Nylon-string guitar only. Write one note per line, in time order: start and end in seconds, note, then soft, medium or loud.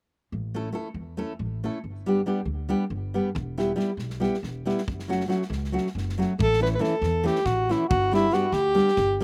0.54 0.68 A3 medium
0.54 0.68 C#4 medium
0.54 0.68 E4 soft
0.54 0.69 A4 medium
0.73 0.87 A3 medium
0.73 0.87 C#4 soft
0.73 0.87 E4 medium
0.73 0.88 A4 medium
1.17 1.31 A3 medium
1.17 1.32 C#4 medium
1.17 1.32 E4 medium
1.17 1.32 A4 medium
1.64 1.77 A3 medium
1.64 1.77 C#4 soft
1.64 1.78 E4 medium
1.64 1.78 A4 medium
2.06 2.19 G3 medium
2.06 2.20 B3 soft
2.06 2.20 D4 medium
2.06 2.21 G4 medium
2.26 2.39 G3 medium
2.26 2.39 B3 soft
2.26 2.39 D4 medium
2.26 2.40 G4 medium
2.69 2.83 G3 medium
2.69 2.83 B3 medium
2.69 2.83 D4 medium
2.69 2.84 G4 medium
3.14 3.28 G3 medium
3.14 3.28 B3 medium
3.14 3.29 D4 medium
3.14 3.29 G4 medium
3.58 3.71 G3 medium
3.58 3.71 B3 medium
3.58 3.71 E4 medium
3.58 3.72 G4 medium
3.76 3.90 G3 medium
3.76 3.90 B3 soft
3.76 3.90 E4 medium
3.76 3.91 G4 medium
4.20 4.34 G3 medium
4.20 4.35 B3 medium
4.20 4.35 E4 soft
4.20 4.35 G4 medium
4.65 4.80 G3 medium
4.65 4.80 B3 medium
4.65 4.80 E4 medium
4.65 4.81 G4 medium
5.08 5.22 F#3 medium
5.08 5.22 A3 soft
5.08 5.23 C#4 medium
5.08 5.23 F#4 medium
5.28 5.41 F#3 medium
5.28 5.42 A3 medium
5.28 5.42 C#4 medium
5.28 5.42 F#4 medium
5.72 5.86 F#3 medium
5.72 5.86 A3 medium
5.72 5.87 C#4 medium
5.72 5.87 F#4 medium
6.18 6.32 F#3 medium
6.18 6.32 A3 medium
6.18 6.32 C#4 soft
6.18 6.32 F#4 medium
6.60 6.73 E3 medium
6.60 6.74 A3 medium
6.60 6.74 C#4 medium
6.60 6.74 E4 medium
6.79 6.93 E3 medium
6.79 6.93 A3 medium
6.79 6.93 C#4 medium
6.79 6.94 E4 medium
7.24 7.38 E3 medium
7.24 7.38 A3 medium
7.24 7.38 C#4 medium
7.24 7.39 E4 medium
7.69 7.83 E3 medium
7.69 7.83 A3 medium
7.69 7.84 C#4 medium
7.69 7.84 E4 medium
8.11 8.25 G3 medium
8.11 8.26 B3 soft
8.11 8.26 D4 medium
8.11 8.26 G4 medium
8.31 8.45 G3 medium
8.31 8.45 B3 medium
8.31 8.45 D4 medium
8.31 8.45 G4 medium
8.75 8.89 G3 medium
8.75 8.89 B3 medium
8.75 8.89 D4 medium
8.75 8.90 G4 medium
9.20 9.24 G3 medium